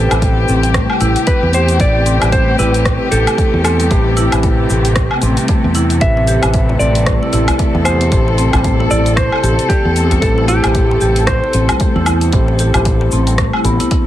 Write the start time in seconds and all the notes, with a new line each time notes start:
Already playing: C3 A3 C4 E4 G4 A4 B4 C5
0.09 A1 C4 E4 G4 B4, closed hi-hat, low woodblock, shaker
0.22 kick, closed hi-hat, shaker
0.49 A1 C4, shaker
0.63 G3, closed hi-hat, shaker
0.74 A3, kick, cross-stick, closed hi-hat, shaker
0.90 low woodblock
1.01 A1 E4, closed hi-hat, shaker
1.16 closed hi-hat, shaker
1.27 B4, kick, closed hi-hat, shaker
1.43 E2
1.53 G4 C5, closed hi-hat, shaker
1.68 closed hi-hat, shaker
1.79 A1 C4 E4 G4 B4 D5, kick, closed hi-hat, shaker
2.06 C4, closed hi-hat, shaker
2.19 A1 G3 C4 E4 G4, closed hi-hat, low woodblock, shaker
2.23 B4
2.32 A3 C5, kick, closed hi-hat, shaker
2.59 A1 E4 B4, shaker
2.74 closed hi-hat, shaker
2.86 kick, cross-stick, closed hi-hat, shaker
3.11 A1 G4 A4, closed hi-hat, shaker
3.27 closed hi-hat, low woodblock, shaker
3.38 kick, closed hi-hat, shaker
3.54 E2
3.64 C4 A4, closed hi-hat, low woodblock, shaker
3.80 G3, closed hi-hat, shaker
3.90 A1 A3 C4 E4 G4 B4, kick, closed hi-hat, shaker
4.17 E4, closed hi-hat, shaker
4.31 A1 C4 E4 G4, closed hi-hat, low woodblock, shaker
4.35 B4
4.43 kick, closed hi-hat, shaker
4.70 A1 G4, shaker
4.85 closed hi-hat, shaker
4.96 kick, cross-stick, closed hi-hat, shaker
5.11 low woodblock
5.22 A1 C4, closed hi-hat, shaker
5.37 G3, closed hi-hat, shaker
5.48 A3, kick, closed hi-hat, shaker
5.64 E2
5.75 E4, closed hi-hat, shaker
5.90 closed hi-hat, shaker
6.00 A1 C4 E4 G4 A4 B4 E5, kick, closed hi-hat, shaker
6.17 djembe slap
6.27 G4, closed hi-hat, djembe tone, shaker
6.41 A1 C4 E4 G4 B4, closed hi-hat, low woodblock, shaker
6.54 kick, closed hi-hat, shaker
6.69 djembe slap, djembe tone
6.79 A1 C4 D5, shaker
6.95 G3, closed hi-hat, shaker
7.06 A3, kick, cross-stick, closed hi-hat, shaker
7.22 E4, djembe slap
7.33 A1 E4, closed hi-hat, shaker
7.48 closed hi-hat, djembe slap, djembe tone, djembe bass, low woodblock, shaker
7.59 kick, closed hi-hat, shaker
7.75 E2, djembe tone
7.85 G4 C5, closed hi-hat, djembe tone, low woodblock, shaker
8.01 closed hi-hat, shaker
8.11 A1 C4 E4 G4 C5, kick, closed hi-hat, shaker
8.28 djembe slap
8.38 C4, closed hi-hat, shaker
8.52 A1 G3 C4 E4 G4, closed hi-hat, djembe bass, low woodblock, shaker
8.56 C5
8.64 A3, kick, closed hi-hat, shaker
8.80 E4, djembe slap, djembe tone
8.91 A1 E4 D5, shaker
9.06 closed hi-hat, djembe slap, shaker
9.16 C5, kick, cross-stick, closed hi-hat, shaker
9.32 low woodblock
9.43 A1 G4, closed hi-hat, djembe tone, shaker
9.59 closed hi-hat, shaker
9.69 G4, kick, closed hi-hat, shaker
9.85 E2
9.96 C4, closed hi-hat, shaker
10.11 G3, closed hi-hat, djembe bass, shaker
10.21 A1 A3 C4 E4 G4 A4 B4, kick, closed hi-hat, shaker
10.38 E4, djembe slap
10.48 E4 G4, closed hi-hat, djembe tone, shaker
10.62 A1 C4 E4 G4 C5, closed hi-hat, low woodblock, shaker
10.75 kick, closed hi-hat, shaker
10.91 djembe slap, djembe tone
11.01 A1 G4, shaker
11.16 closed hi-hat, shaker
11.27 C5, kick, cross-stick, closed hi-hat, shaker
11.44 djembe slap
11.53 A1 C4, closed hi-hat, shaker
11.69 G3, closed hi-hat, djembe slap, djembe tone, djembe bass, low woodblock, shaker
11.80 A3, kick, closed hi-hat, shaker
11.96 E2 E4, djembe tone
12.06 E4, closed hi-hat, djembe tone, low woodblock, shaker
12.21 closed hi-hat, shaker
12.33 A1 C4 E4 G4 C5, kick, closed hi-hat, shaker
12.48 djembe slap
12.59 G4, closed hi-hat, djembe tone, shaker
12.74 A1 E4 G4 C5, closed hi-hat, djembe bass, low woodblock, shaker
12.85 kick, closed hi-hat, shaker
13.01 djembe slap, djembe tone
13.12 A1 C4, shaker
13.27 G3, closed hi-hat, djembe slap, shaker
13.38 A3, kick, cross-stick, closed hi-hat, shaker
13.53 E4, low woodblock
13.65 A1 B3, closed hi-hat, djembe tone, shaker
13.80 E4, closed hi-hat, djembe tone, shaker
13.91 E4, kick, closed hi-hat, shaker